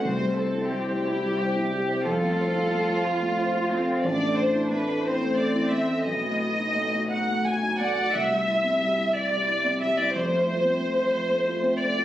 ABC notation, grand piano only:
X:1
M:6/8
L:1/16
Q:3/8=60
K:C
V:1 name="Grand piano"
C,, G, c E G, c2 G, c E G, c | F,, A, c F A, c2 A, c F A, c | A,,, A, A E A, A2 A, A E A, A | B,,, A, ^F ^D A, F2 A, F D A, F |
C,, G, E C G, E2 G, E C G, E | F,, A, F C A, F2 A, F C A, F |]